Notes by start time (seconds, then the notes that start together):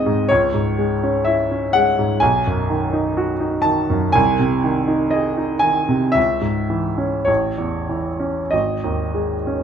Already playing: C#2 G#2 G#3 C4 D#4 D#5 F#5
0.06 G#2
0.29 C#2 C#5
0.54 G#2
0.79 G#3
1.03 C#4
1.25 E4 E5
1.51 C#4
1.73 G#3 F#5
1.99 G#2
2.20 B1 G#5
2.47 F#2
2.70 D#3
2.93 D#4
3.17 F#4
3.40 D#4
3.62 D#3 A5
3.90 F#2
4.12 C2 G#5
4.39 C3
4.64 D#3
4.88 D#4
5.11 G#4 D#5
5.37 D#4
5.59 D#3 G#5
5.89 C3
6.12 C#2 E5
6.41 G#2
6.70 E3
6.98 C#4
7.25 A1 C#5
7.58 E2
7.89 E3
8.20 C#4
8.51 G#1 D#5
8.84 D#2
9.14 G#3
9.47 C#4